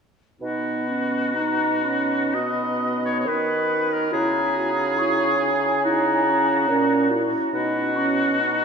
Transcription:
0.40 bassoon B2, french horn B3, clarinet D#4, oboe F#4, flute B5
0.88 clarinet C#4
1.33 clarinet D#4, french horn D#4, flute A#5
1.83 french horn C#4, flute B5
2.34 french horn B3, clarinet F#4, oboe D#5, flute B5
3.05 oboe C#5
3.20 oboe C#5
3.25 bassoon D#3, french horn D#4, oboe B4
3.93 oboe A#4
4.10 bassoon C#3, french horn E4, clarinet E4, oboe G#4, flute A#5
4.56 french horn F#4
4.98 french horn E4, clarinet E4, flute C#6
5.41 flute G#5
5.84 french horn D#4, oboe F#4, flute A#5
6.25 french horn C#4
6.66 bassoon A#2, french horn C#4, clarinet C#4
7.10 french horn E4, clarinet F#4
7.51 bassoon B2, french horn D#4, oboe F#4, flute B5
7.96 french horn C#4, flute C#6
8.39 french horn D#4, clarinet D#4

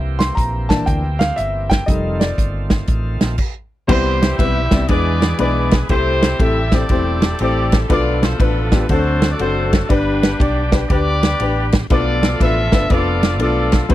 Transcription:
Already playing: fingered electric bass C2, tonewheel organ E3 A#3 C4 G4
0.19 grand piano C6, snare, closed hi-hat
0.35 fingered electric bass A#1, grand piano A#5, kick, closed hi-hat
0.69 grand piano E3 A#3 D4 A5, kick, snare, closed hi-hat
0.86 fingered electric bass D2, grand piano G5, kick, closed hi-hat
1.19 grand piano F5, snare, closed hi-hat
1.36 fingered electric bass G1, grand piano E5, closed hi-hat
1.70 grand piano G5, kick, snare, closed hi-hat
1.86 fingered electric bass F1, tonewheel organ D#3 A3 C4 E4, grand piano G3 A3 D#4 D#5, kick, closed hi-hat
1.94 tonewheel organ F4
2.19 grand piano D5, snare, closed hi-hat
2.38 fingered electric bass G1, kick, closed hi-hat
2.70 kick, snare, closed hi-hat
2.87 fingered electric bass A1, kick, closed hi-hat
3.21 fingered electric bass A#1, snare, closed hi-hat
3.38 kick, crash
3.87 fingered electric bass C2, grand piano C3 G3 B3 C4 E4 B4, tonewheel organ E3 G3 C4 G4, horn section E4 G4 C5, kick, crash
4.22 snare, ride
4.38 fingered electric bass B1, grand piano G3 B3 C4 E4 B4, horn section G4 B4 E5, kick, ride
4.71 fingered electric bass C2, grand piano G3 B3 C4 E4 D5, kick, snare, ride
4.88 fingered electric bass E2, tonewheel organ E3 G#3 B3 D4 G#4, grand piano E3 G#3 B3 D4 E4 B4, horn section G#4 B4 D5, kick, ride
5.22 snare, ride
5.38 fingered electric bass B1, grand piano G#3 B3 D4 E4 B4, horn section G#4 B4 D5, ride
5.71 kick, snare, ride
5.89 fingered electric bass C2, grand piano C3 A3 C4 E4 G4 C5, tonewheel organ G3 A3 B3 E4 A4, horn section E4 G4 C5, kick, ride
5.96 tonewheel organ C4
6.22 snare, ride
6.39 fingered electric bass A1, grand piano A3 C4 E4 G4 A4, horn section E5, kick, ride
6.71 grand piano A3 C4 E4 G4 C5, horn section A4 D5, kick, snare, ride
6.76 horn section G4
6.89 fingered electric bass E1, grand piano A3 C4 E4 G4 C5, kick, ride
7.22 snare, ride
7.39 fingered electric bass A1, grand piano A3 C4 E4 G4 C5, horn section G4 A4 D5, ride
7.72 kick, snare, ride
7.88 fingered electric bass B1, grand piano B2 A3 B3 D4 F4 B4, tonewheel organ F3 A3 B3 D4 G#4, horn section F4 A4 D5, kick, ride
7.95 tonewheel organ A4
8.23 horn section C5, snare, ride
8.39 fingered electric bass A1, grand piano A3 B3 D4 F4 B4, horn section D4 F4 B4, kick, ride
8.72 grand piano A3 B3 D4 F4 G4, kick, snare, ride
8.81 horn section B4
8.89 fingered electric bass D2, grand piano D3 A3 C4 D4 F#4 C5, tonewheel organ F#3 A3 C4 D4 A4, horn section F#4 A4 C5, kick, ride
9.22 snare, ride
9.32 horn section D5
9.39 fingered electric bass F#1, grand piano A3 C4 D4 F#4 C5, horn section F#4 A4 C5, ride
9.73 kick, snare, ride
9.89 fingered electric bass G1, grand piano G2 D4 G4 B4, tonewheel organ B3 D4 G4, horn section D4 G4 B4, kick, ride
10.23 snare, ride
10.39 fingered electric bass B1, grand piano D4 G4 D5, horn section D5, kick, ride
10.72 grand piano D4 G4 B4, kick, snare, ride
10.89 fingered electric bass D2, grand piano D4 G4 B4, horn section G4 B4 D5, kick, ride
11.23 snare, ride
11.40 fingered electric bass A1, grand piano D4 G4 B4, ride
11.72 kick, snare, ride
11.90 fingered electric bass B1, grand piano B2 A3 B3 D4 F4 B4, tonewheel organ F3 A3 B3 D4 G4, horn section F4 A4 D5, kick, ride
11.97 tonewheel organ A4
12.23 snare, ride
12.40 fingered electric bass A1, grand piano A3 B3 D4 F4 B4, horn section A4 E5, kick, ride
12.72 fingered electric bass G1, grand piano A3 B3 D4 F4 B4, kick, snare, ride
12.89 fingered electric bass F1, grand piano A3 B3 D4 F4 B4, horn section F4 A4 D5, kick, ride
13.23 snare, ride
13.39 fingered electric bass B1, grand piano A3 B3 D4 F4 A4, horn section F4 A4 D5, ride
13.72 kick, snare, ride
13.89 fingered electric bass C2, grand piano C3 G3 B3 C4 E4 B4, tonewheel organ E3 G3 C4 G4, horn section E4 C5, kick, ride

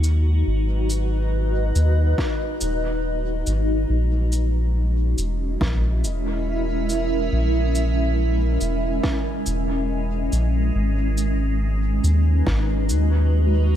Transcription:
Already playing: sub bass D#2, ambient pad G#3 D#4 F#4 B4
0.04 cabasa
0.14 ambient pad D#5
0.47 sub bass G#1
0.90 cabasa
1.75 sub bass D#2, cabasa
2.18 kick, snare
2.61 sub bass D#1, cabasa
3.47 sub bass G#1, cabasa
3.89 sub bass A#1, ambient pad G#3
4.32 cabasa
4.39 ambient pad C#4
4.84 ambient pad E4
4.95 ambient pad A#4
5.12 ambient pad E5
5.18 sub bass E1, cabasa
5.61 sub bass A#1, kick, snare
6.03 sub bass E1, cabasa
6.89 cabasa
7.32 sub bass A#1
7.75 cabasa
8.61 sub bass E1, cabasa
9.04 kick, snare
9.46 sub bass E1, cabasa
10.32 sub bass A#1, cabasa
10.75 sub bass G#1
10.93 ambient pad D#4
11.18 cabasa
11.50 ambient pad B4
12.04 sub bass D#2, cabasa
12.11 ambient pad F#4
12.47 sub bass G#1, kick, snare
12.89 sub bass D#2, cabasa
13.08 ambient pad D#5

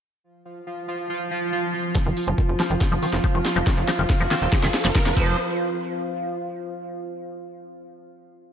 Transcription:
0.24 synth texture F3 F4, ambient pad F4
0.67 ambient pad C5
0.73 ambient pad F5
1.95 synth texture F3 F4, acid bass F3, kick, snare, closed hi-hat, riser
2.06 analog synth bass F1, acid bass D#3
2.17 open hi-hat
2.27 analog synth bass F1, acid bass F3, closed hi-hat
2.38 acid bass D#3, kick, closed hi-hat
2.49 analog synth bass F1
2.60 acid bass F3, snare, open hi-hat
2.70 analog synth bass F1, acid bass D#3, closed hi-hat
2.81 kick, snare, closed hi-hat
2.92 analog synth bass F1, acid bass F3
3.02 acid bass D#3, open hi-hat
3.13 analog synth bass F1, snare, closed hi-hat
3.24 acid bass F3, kick, closed hi-hat
3.35 analog synth bass F1, acid bass D#3
3.45 snare, open hi-hat
3.56 analog synth bass F1, acid bass F3, closed hi-hat
3.67 acid bass D#3, kick, snare, closed hi-hat
3.77 analog synth bass F1
3.88 acid bass F3, snare, open hi-hat
3.99 analog synth bass F1, acid bass D#3, closed hi-hat
4.10 kick, snare, closed hi-hat
4.20 analog synth bass F1, acid bass F3
4.31 acid bass D#3, wobble bass C4, snare, open hi-hat
4.42 analog synth bass D#1, wobble bass C4, closed hi-hat
4.52 acid bass F3, kick, snare, closed hi-hat
4.63 analog synth bass F1, acid bass D#3, snare
4.74 snare, open hi-hat
4.85 analog synth bass F1, acid bass F3, snare, closed hi-hat
4.95 acid bass D#3, kick, snare, closed hi-hat
5.06 analog synth bass F1, snare
5.17 analog synth bass F1, acid bass F3, wobble bass C4, ambient pad F4, kick
5.23 ambient pad C5
5.51 ambient pad F5

